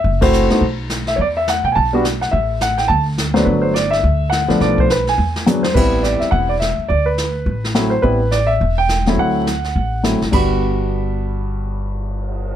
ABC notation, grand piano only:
X:1
M:4/4
L:1/16
Q:"Swing" 1/4=210
K:G
V:1 name="Grand piano"
e2 c6 z6 e3/2 ^c/2 | d2 e2 f2 g3/2 _a/2 =a2 z4 f2 | e4 f2 g2 a2 z4 c2 | B2 c2 d2 e6 f4 |
d2 c2 B2 _a8 c2 | B4 d2 e2 f2 d2 e4 | d2 B12 c2 | B4 d2 e4 g4 z2 |
f12 z4 | b16- | b16 |]
V:2 name="Grand piano"
z2 [A,CEF]4 [A,B,_EF]2 z8 | z8 z2 [G,B,DF]2 z4 | z12 z2 [F,A,B,D]2- | [F,A,B,D]4 z8 z2 [=F,A,B,D]2- |
[=F,A,B,D]4 z8 [^F,^G,B,D]2 z2 | [G,B,CE]8- [G,B,CE]2 z6 | z12 [F,A,CE]2 z2 | [G,B,CE]2 z12 [F,A,CE]2- |
[F,A,CE]4 z8 [F,A,CE]2 z2 | [G,,G,B,F]16- | [G,,G,B,F]16 |]